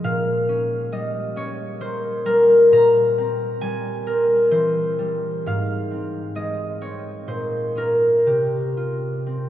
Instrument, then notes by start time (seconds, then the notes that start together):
harp
0.04 A#2 F5
0.49 C#4
0.92 G3 D#5
1.36 C#4 C#5
1.80 A#3 C5
2.25 G3 A#4
2.72 A#2 A#5
3.18 C4
3.61 G3 G#5
4.06 C4 A#4
4.51 E3 C5
4.99 G3
5.46 G#2 F5
5.91 C4
6.35 G#3 D#5
6.81 C4 C#5
7.28 A#2 C5
7.75 C#4 F4 A#4
8.26 C3 G4
8.77 F4
9.27 C4